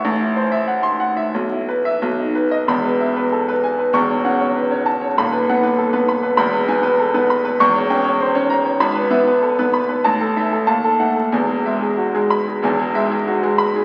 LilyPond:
<<
  \new Staff \with { instrumentName = "Grand piano" } { \time 2/4 \key e \major \tempo 4 = 96 << { r4 r16 c'''8 r16 | r8. e''16 r8. dis''16 | b''8 r4. | cis'''8 r4. |
b''8 r4. | b''8 r4. | cis'''8 r4. | b''8 r4. |
a''8 r8 a''8 r8 | r4. b''8 | r4. b''8 | } \\ { r2 | r2 | r16 b'16 e''16 b'16 a'16 b'16 gis''16 b'16 | r16 cis''16 fis''16 cis''16 b'16 cis''16 a''16 cis''16 |
r16 b'16 fis''16 b'16 a'16 b'16 b''16 b'16 | r16 b'16 gis''16 b'16 a'16 b'16 b''16 b'16 | r16 cis''16 g''16 cis''16 c''16 cis''16 bes''16 cis''16 | r16 b'16 e''16 b'16 a'16 b'16 b''16 b'16 |
r16 a'16 e''16 a'16 r16 a'16 fis''16 a'16 | gis''16 gis'16 e''16 gis'16 fis'16 gis'8 gis'16 | gis''16 gis'16 e''16 gis'16 fis'16 gis'8 gis'16 | } >> }
  \new Staff \with { instrumentName = "Grand piano" } { \clef bass \time 2/4 \key e \major a,,16 e'16 c''16 e''16 fis''8 fis''16 e''16 | b,,16 e'16 b'8 b,,16 dis'16 b'8 | <e,, e,>2 | <e,, e,>8 cis'8 r16 cis'8 r16 |
<dis,, dis,>8 b8 r16 b8 r16 | <e,, e,>8 b8 r16 b8 r16 | <e,, e,>8 cis'8 r16 cis'8 r16 | gis,,8 b8 r16 b8 r16 |
a,,8 a8 dis,8 a8 | <e,, e,>8 gis8 r16 gis8 r16 | <e,, e,>8 gis8 r16 gis8 r16 | }
>>